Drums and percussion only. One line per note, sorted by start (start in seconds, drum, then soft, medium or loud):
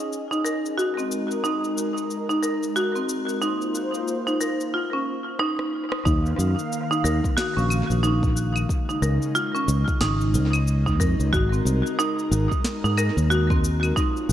0.13 cabasa soft
0.33 cabasa soft
0.46 cabasa medium
0.66 cabasa soft
0.79 cabasa soft
0.99 cabasa soft
1.12 cabasa medium
1.31 cabasa soft
1.45 cabasa soft
1.64 cabasa soft
1.78 cabasa medium
1.97 cabasa soft
2.11 cabasa soft
2.30 cabasa soft
2.43 cabasa medium
2.63 cabasa soft
2.76 cabasa soft
2.96 cabasa soft
3.09 cabasa medium
3.29 cabasa soft
3.42 cabasa soft
3.62 cabasa soft
3.75 cabasa medium
3.94 cabasa soft
4.08 cabasa soft
4.28 cabasa soft
4.41 cabasa medium
4.61 cabasa soft
5.39 cross-stick medium
5.59 cross-stick medium
5.92 cross-stick medium
6.06 kick loud
6.06 cabasa soft
6.26 cabasa soft
6.40 cabasa medium
6.59 cabasa soft
6.73 cabasa soft
6.92 cabasa soft
7.05 cabasa medium
7.24 kick loud
7.24 cabasa soft
7.38 snare medium
7.38 cabasa soft
7.58 cabasa soft
7.70 cabasa medium
7.70 claves medium
7.91 cabasa soft
8.04 cabasa soft
8.23 kick loud
8.23 cabasa soft
8.37 cabasa medium
8.56 cabasa soft
8.56 claves medium
8.69 kick loud
8.69 cabasa soft
8.90 cabasa soft
9.03 cabasa medium
9.22 cabasa soft
9.35 cabasa soft
9.55 cabasa soft
9.69 cabasa medium
9.88 kick loud
9.88 cabasa soft
10.01 snare medium
10.01 cabasa soft
10.21 cabasa soft
10.34 cabasa medium
10.53 cabasa soft
10.53 claves medium
10.68 cabasa soft
10.87 kick medium
10.87 cabasa soft
11.00 kick loud
11.00 cabasa medium
11.20 cabasa soft
11.33 kick loud
11.33 cabasa soft
11.53 cabasa soft
11.67 cabasa medium
11.87 cabasa soft
12.00 cabasa soft
12.19 cabasa soft
12.32 cabasa medium
12.51 kick loud
12.51 cabasa soft
12.64 snare medium
12.64 cabasa soft
12.85 cabasa soft
12.97 cabasa medium
12.97 claves medium
13.18 cabasa soft
13.31 cabasa soft
13.50 kick loud
13.50 cabasa soft
13.64 cabasa medium
13.83 cabasa soft
13.83 claves medium
13.97 kick loud
13.97 cabasa soft
14.17 cabasa soft